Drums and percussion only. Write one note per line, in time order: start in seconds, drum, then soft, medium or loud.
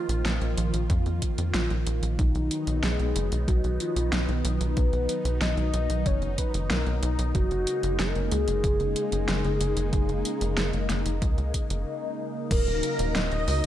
0.09 closed hi-hat medium
0.25 snare loud
0.25 closed hi-hat soft
0.41 closed hi-hat soft
0.58 closed hi-hat medium
0.74 closed hi-hat medium
0.90 kick loud
0.90 closed hi-hat medium
1.06 closed hi-hat soft
1.22 kick medium
1.22 closed hi-hat medium
1.38 closed hi-hat medium
1.54 snare loud
1.54 closed hi-hat medium
1.70 closed hi-hat soft
1.87 closed hi-hat medium
2.03 closed hi-hat soft
2.19 kick loud
2.19 closed hi-hat soft
2.35 closed hi-hat soft
2.51 closed hi-hat medium
2.67 closed hi-hat soft
2.83 snare loud
2.83 closed hi-hat soft
3.00 closed hi-hat soft
3.16 closed hi-hat medium
3.32 closed hi-hat medium
3.48 kick loud
3.48 closed hi-hat soft
3.64 closed hi-hat soft
3.80 closed hi-hat medium
3.96 closed hi-hat medium
4.13 snare loud
4.13 closed hi-hat medium
4.29 closed hi-hat soft
4.45 closed hi-hat medium
4.61 closed hi-hat soft
4.77 kick loud
4.77 closed hi-hat soft
4.93 closed hi-hat soft
5.09 closed hi-hat medium
5.25 closed hi-hat soft
5.41 snare loud
5.41 closed hi-hat soft
5.58 closed hi-hat soft
5.74 closed hi-hat medium
5.90 closed hi-hat medium
6.06 kick loud
6.06 closed hi-hat soft
6.22 closed hi-hat soft
6.38 kick medium
6.38 closed hi-hat medium
6.54 closed hi-hat medium
6.70 snare loud
6.70 closed hi-hat soft
6.86 closed hi-hat soft
7.03 closed hi-hat medium
7.19 closed hi-hat soft
7.35 kick loud
7.35 closed hi-hat soft
7.51 closed hi-hat soft
7.67 closed hi-hat medium
7.83 closed hi-hat soft
7.99 snare loud
7.99 closed hi-hat medium
8.15 closed hi-hat soft
8.32 closed hi-hat medium
8.48 closed hi-hat medium
8.64 kick loud
8.64 closed hi-hat medium
8.80 closed hi-hat soft
8.96 closed hi-hat medium
9.12 closed hi-hat medium
9.28 snare loud
9.28 closed hi-hat soft
9.45 closed hi-hat soft
9.61 closed hi-hat medium
9.77 closed hi-hat medium
9.93 kick loud
9.93 closed hi-hat medium
10.09 closed hi-hat soft
10.25 closed hi-hat medium
10.41 closed hi-hat medium
10.57 snare loud
10.57 closed hi-hat medium
10.73 closed hi-hat soft
10.90 snare medium
10.90 closed hi-hat medium
11.06 closed hi-hat medium
11.22 kick loud
11.22 closed hi-hat medium
11.38 closed hi-hat soft
11.54 kick medium
11.54 closed hi-hat medium
11.70 closed hi-hat medium
12.51 kick loud
12.51 closed hi-hat medium
12.51 crash loud
12.67 closed hi-hat soft
12.83 closed hi-hat medium
12.99 closed hi-hat medium
13.15 snare loud
13.15 closed hi-hat medium
13.32 closed hi-hat soft
13.48 open hi-hat medium